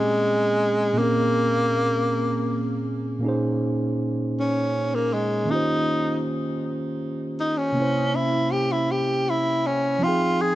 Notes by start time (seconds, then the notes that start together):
Already playing: A#2 G#3 A#3 C4 C#4 G#5
0.93 A#2 A#3
0.98 A#3 C4 C#4
1.03 G#4
3.19 A#2 A#3
3.23 C#4 D#4 G#4
3.28 C5
4.39 C#4
4.95 A#3
5.14 G#3
5.45 D#3 A#3 C#4
5.51 D#4 F4 G4
5.55 C5
7.40 D#4
7.58 C#4
7.72 C3 A#3
7.77 C#4 E4
7.82 C5
8.15 E4
8.52 G4
8.72 E4
8.92 G4
9.30 E4
9.66 C#4
9.99 F3 C4
10.03 D#4 F4 G5
10.08 G#4
10.41 G#4